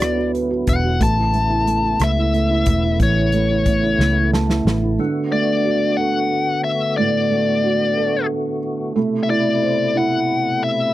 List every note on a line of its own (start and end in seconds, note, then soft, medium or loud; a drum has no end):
0.00 0.63 D2 medium
0.00 0.97 D3 soft
0.00 0.96 F#3 soft
0.00 0.97 F#3 medium
0.00 1.02 B3 medium
0.00 4.95 B3 soft
0.00 4.95 E4 medium
0.00 0.17 F#4 soft
0.00 0.34 B4 soft
0.00 0.31 D5 medium
0.00 cross-stick loud
0.00 closed hi-hat medium
0.17 0.49 F#4 soft
0.34 0.66 B4 soft
0.34 closed hi-hat soft
0.50 0.82 F#4 soft
0.67 0.99 E1 medium
0.67 1.00 B4 soft
0.67 1.03 F#5 medium
0.67 kick medium
0.67 closed hi-hat medium
0.84 1.00 F#4 soft
0.99 1.96 A1 medium
0.99 4.95 C#3 medium
0.99 1.32 A3 medium
0.99 4.95 A3 soft
0.99 2.05 A5 medium
0.99 kick medium
0.99 closed hi-hat medium
1.17 1.48 E4 soft
1.34 1.65 A3 soft
1.34 closed hi-hat soft
1.50 1.81 E4 soft
1.66 1.98 A3 soft
1.66 closed hi-hat medium
1.83 2.15 E4 soft
1.99 2.63 C#2 medium
1.99 2.32 A3 medium
1.99 cross-stick medium
1.99 closed hi-hat medium
2.04 2.98 E5 medium
2.17 2.49 E4 soft
2.33 2.66 A3 soft
2.33 closed hi-hat soft
2.51 2.82 E4 medium
2.66 2.98 E1 medium
2.66 3.32 A3 soft
2.66 kick medium
2.66 closed hi-hat medium
2.84 3.15 E4 soft
3.00 3.95 A1 medium
3.00 4.95 E3 medium
3.00 4.30 C#5 medium
3.00 kick medium
3.00 closed hi-hat medium
3.16 3.49 E4 soft
3.32 3.66 A3 soft
3.32 closed hi-hat soft
3.51 3.82 E4 soft
3.66 3.98 A3 soft
3.66 kick medium
3.66 closed hi-hat medium
3.83 4.16 E4 soft
3.99 4.62 C#2 medium
3.99 4.32 A3 medium
3.99 snare soft
4.17 4.47 E4 soft
4.33 4.64 A3 medium
4.33 4.95 A5 medium
4.33 snare medium
4.49 4.81 E4 soft
4.49 snare medium
4.65 4.97 A1 medium
4.65 4.98 A3 medium
4.65 snare medium
4.83 4.99 E4 medium
4.99 6.94 D3 medium
4.99 8.93 D3 medium
4.99 10.94 A3 medium
4.99 8.93 B3 medium
4.99 8.93 F#4 medium
5.32 6.61 A3 medium
5.32 6.00 D5 medium
5.65 6.94 F#4 medium
5.97 7.27 A4 medium
5.97 6.60 F#5 loud
6.64 6.97 E5 medium
6.97 8.93 A2 medium
6.97 8.26 D5 medium
7.30 8.59 A3 medium
7.64 8.93 F#4 medium
7.97 8.94 A4 medium
8.96 10.94 B2 medium
8.96 10.94 C3 medium
8.96 10.91 A3 medium
8.96 10.94 E4 medium
9.23 9.30 E5 medium
9.29 9.94 E4 medium
9.29 9.98 D5 medium
9.63 10.91 C5 medium
9.95 10.94 E4 medium
9.95 10.65 F#5 loud
10.64 10.94 E5 loud